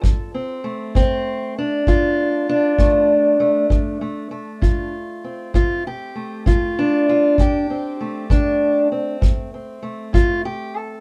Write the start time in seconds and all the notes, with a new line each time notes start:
Already playing: F4 A4 D5
0.01 D2, kick
0.34 C4
0.64 A3
0.95 D3 C4, kick
1.58 D4
1.87 D2 F4, kick
2.49 D4
2.79 D3 A3, kick
3.40 A3
3.70 D2, kick
4.01 A3
4.31 A3
4.62 D3 F4, kick
5.24 C4
5.54 D2 F4, kick
5.87 G4
6.15 A3
6.46 D3 F4, kick
6.79 D4
7.09 F4
7.38 D2 G4, kick
7.70 C4
8.01 A3
8.30 D3 D4, kick
8.92 C4
9.21 D2, kick
9.54 C4
9.83 A3
10.13 D3 F4, kick
10.45 G4
10.77 A4